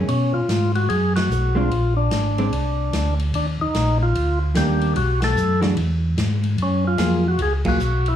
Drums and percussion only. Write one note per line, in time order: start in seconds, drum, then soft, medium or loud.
0.08 ride medium
0.49 snare medium
0.49 hi-hat pedal medium
0.49 ride medium
0.75 ride soft
0.90 ride medium
1.16 snare medium
1.16 ride medium
1.31 hi-hat pedal medium
1.71 ride medium
2.11 snare medium
2.11 hi-hat pedal soft
2.11 ride medium
2.38 ride soft
2.53 ride medium
2.93 snare medium
2.93 hi-hat pedal medium
2.93 ride medium
3.19 ride soft
3.34 ride medium
3.75 snare medium
3.75 hi-hat pedal soft
3.75 ride medium
4.15 ride medium
4.55 snare medium
4.55 hi-hat pedal medium
4.55 ride medium
4.81 ride soft
4.96 ride medium
5.22 snare medium
5.22 ride medium
5.36 hi-hat pedal medium
5.62 snare medium
5.62 ride soft
5.77 ride medium
6.18 snare medium
6.18 hi-hat pedal medium
6.18 ride medium
6.43 ride soft
6.58 ride medium
6.98 snare medium
6.98 hi-hat pedal medium
6.98 ride medium
7.39 ride medium
7.65 kick medium
7.65 crash medium
7.79 hi-hat pedal medium
8.06 ride soft